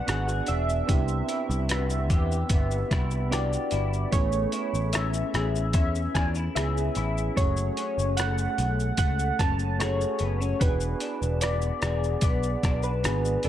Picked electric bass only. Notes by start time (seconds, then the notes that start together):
0.08 G#1
0.49 E1
0.89 C2
1.50 C2
2.10 E2
2.50 G1
2.91 C2
3.72 G1
4.13 A1
4.74 A1
5.34 A1
5.74 E2
6.15 E2
6.56 C#2
6.97 A1
7.37 F#1
7.98 F#1
8.58 B1
8.98 C#2
9.39 F#1
10.21 F#1
10.61 E1
11.22 E1
11.83 E1
12.22 B1
12.63 B1
13.04 G#1
13.45 E1